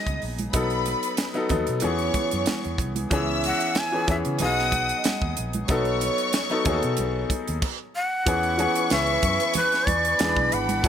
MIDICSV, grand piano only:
0, 0, Header, 1, 2, 480
1, 0, Start_track
1, 0, Tempo, 643777
1, 400, Time_signature, 4, 2, 24, 8
1, 8112, End_track
2, 0, Start_track
2, 0, Title_t, "Grand piano"
2, 0, Program_c, 0, 0
2, 0, Control_c, 0, 64, 127
2, 0, Note_on_c, 0, 54, 69
2, 0, Note_on_c, 0, 59, 64
2, 0, Note_on_c, 0, 63, 66
2, 0, Note_on_c, 0, 68, 76
2, 233, Note_off_c, 0, 54, 0
2, 236, Note_off_c, 0, 59, 0
2, 238, Note_off_c, 0, 63, 0
2, 241, Note_off_c, 0, 68, 0
2, 396, Note_on_c, 0, 54, 79
2, 400, Note_on_c, 0, 59, 73
2, 405, Note_on_c, 0, 63, 75
2, 412, Control_c, 0, 64, 0
2, 414, Note_on_c, 0, 69, 89
2, 554, Control_c, 0, 64, 127
2, 891, Note_off_c, 0, 54, 0
2, 893, Note_off_c, 0, 59, 0
2, 896, Note_off_c, 0, 63, 0
2, 900, Note_off_c, 0, 69, 0
2, 999, Note_on_c, 0, 54, 90
2, 1005, Note_on_c, 0, 59, 76
2, 1008, Note_on_c, 0, 63, 81
2, 1019, Note_on_c, 0, 69, 93
2, 1095, Note_off_c, 0, 54, 0
2, 1098, Note_off_c, 0, 59, 0
2, 1100, Note_off_c, 0, 63, 0
2, 1105, Note_off_c, 0, 69, 0
2, 1110, Note_on_c, 0, 54, 90
2, 1117, Note_on_c, 0, 59, 80
2, 1125, Note_on_c, 0, 63, 76
2, 1126, Note_on_c, 0, 69, 90
2, 1351, Note_off_c, 0, 59, 0
2, 1356, Note_off_c, 0, 54, 0
2, 1358, Note_on_c, 0, 52, 84
2, 1362, Note_on_c, 0, 59, 83
2, 1363, Note_off_c, 0, 63, 0
2, 1364, Note_off_c, 0, 69, 0
2, 1368, Note_on_c, 0, 61, 72
2, 1372, Control_c, 0, 64, 0
2, 1373, Note_on_c, 0, 68, 87
2, 1483, Control_c, 0, 64, 127
2, 2152, Note_off_c, 0, 52, 0
2, 2154, Note_off_c, 0, 59, 0
2, 2157, Note_off_c, 0, 61, 0
2, 2159, Note_off_c, 0, 68, 0
2, 2316, Note_on_c, 0, 52, 86
2, 2320, Note_on_c, 0, 59, 71
2, 2327, Note_on_c, 0, 61, 80
2, 2332, Control_c, 0, 64, 0
2, 2334, Note_on_c, 0, 68, 91
2, 2455, Control_c, 0, 64, 127
2, 2812, Note_off_c, 0, 52, 0
2, 2814, Note_off_c, 0, 59, 0
2, 2817, Note_off_c, 0, 61, 0
2, 2821, Note_off_c, 0, 68, 0
2, 2926, Note_on_c, 0, 52, 74
2, 2932, Note_on_c, 0, 59, 65
2, 2936, Note_on_c, 0, 61, 61
2, 2943, Note_on_c, 0, 68, 77
2, 3019, Note_off_c, 0, 52, 0
2, 3023, Note_off_c, 0, 59, 0
2, 3025, Note_off_c, 0, 61, 0
2, 3028, Note_off_c, 0, 68, 0
2, 3038, Note_on_c, 0, 52, 74
2, 3045, Note_on_c, 0, 59, 65
2, 3048, Note_on_c, 0, 61, 73
2, 3055, Note_on_c, 0, 68, 80
2, 3270, Note_off_c, 0, 59, 0
2, 3278, Note_on_c, 0, 54, 71
2, 3280, Note_off_c, 0, 52, 0
2, 3281, Note_on_c, 0, 59, 65
2, 3285, Note_off_c, 0, 61, 0
2, 3286, Note_off_c, 0, 68, 0
2, 3290, Note_on_c, 0, 63, 61
2, 3293, Control_c, 0, 64, 0
2, 3297, Note_on_c, 0, 68, 79
2, 3439, Control_c, 0, 64, 127
2, 4072, Note_off_c, 0, 54, 0
2, 4074, Note_off_c, 0, 59, 0
2, 4078, Note_off_c, 0, 63, 0
2, 4082, Note_off_c, 0, 68, 0
2, 4237, Note_on_c, 0, 54, 85
2, 4246, Note_on_c, 0, 59, 78
2, 4249, Note_on_c, 0, 63, 77
2, 4252, Control_c, 0, 64, 0
2, 4256, Note_on_c, 0, 69, 98
2, 4396, Control_c, 0, 64, 127
2, 4732, Note_off_c, 0, 54, 0
2, 4737, Note_off_c, 0, 59, 0
2, 4739, Note_off_c, 0, 63, 0
2, 4742, Note_off_c, 0, 69, 0
2, 4845, Note_on_c, 0, 54, 84
2, 4848, Note_on_c, 0, 59, 83
2, 4855, Note_on_c, 0, 63, 86
2, 4862, Note_on_c, 0, 69, 98
2, 4939, Note_off_c, 0, 54, 0
2, 4941, Note_off_c, 0, 59, 0
2, 4944, Note_off_c, 0, 63, 0
2, 4948, Note_off_c, 0, 69, 0
2, 4954, Note_on_c, 0, 54, 91
2, 4958, Note_on_c, 0, 59, 76
2, 4966, Note_on_c, 0, 63, 84
2, 4971, Note_on_c, 0, 68, 80
2, 5019, Note_off_c, 0, 68, 0
2, 5020, Note_on_c, 0, 69, 102
2, 5678, Note_off_c, 0, 54, 0
2, 5681, Note_off_c, 0, 59, 0
2, 5684, Note_off_c, 0, 63, 0
2, 5693, Control_c, 0, 64, 0
2, 5711, Note_off_c, 0, 69, 0
2, 6158, Note_on_c, 0, 52, 72
2, 6165, Note_on_c, 0, 59, 66
2, 6170, Note_on_c, 0, 61, 64
2, 6174, Note_on_c, 0, 68, 81
2, 6314, Control_c, 0, 64, 127
2, 6360, Note_off_c, 0, 52, 0
2, 6364, Note_off_c, 0, 59, 0
2, 6367, Note_off_c, 0, 61, 0
2, 6369, Note_off_c, 0, 68, 0
2, 6395, Note_on_c, 0, 52, 73
2, 6402, Note_on_c, 0, 59, 62
2, 6404, Note_on_c, 0, 61, 71
2, 6413, Note_on_c, 0, 68, 83
2, 7190, Note_off_c, 0, 52, 0
2, 7194, Note_off_c, 0, 59, 0
2, 7195, Note_off_c, 0, 61, 0
2, 7199, Note_off_c, 0, 68, 0
2, 7606, Note_on_c, 0, 52, 73
2, 7609, Note_on_c, 0, 59, 64
2, 7613, Control_c, 0, 64, 0
2, 7613, Note_on_c, 0, 62, 63
2, 7622, Note_on_c, 0, 68, 78
2, 7737, Control_c, 0, 64, 127
2, 8004, Note_off_c, 0, 52, 0
2, 8006, Note_off_c, 0, 59, 0
2, 8008, Note_off_c, 0, 62, 0
2, 8012, Note_off_c, 0, 68, 0
2, 8083, Note_on_c, 0, 52, 73
2, 8089, Note_on_c, 0, 57, 68
2, 8091, Control_c, 0, 64, 0
2, 8112, Note_off_c, 0, 52, 0
2, 8112, Note_off_c, 0, 57, 0
2, 8112, End_track
0, 0, End_of_file